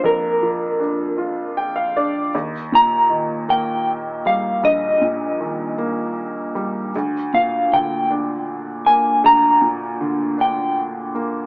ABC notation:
X:1
M:6/8
L:1/16
Q:3/8=52
K:Eb
V:1 name="Clean electric guitar"
B8 z4 | z2 b4 g4 f2 | e8 z4 | z2 f2 g4 z2 a2 |
b6 g4 z2 |]
V:2 name="Upright piano"
z8 g f d2 | z12 | z12 | z12 |
z12 |]
V:3 name="Upright piano" clef=bass
[F,,DF]2 F,2 D2 F4 D2 | E,,2 B,,2 E,2 B,4 G,2 | B,,,2 B,,2 E,2 B,4 G,2 | D,,2 B,,2 D,2 D4 B,2 |
D,,2 B,,2 D,2 D4 B,2 |]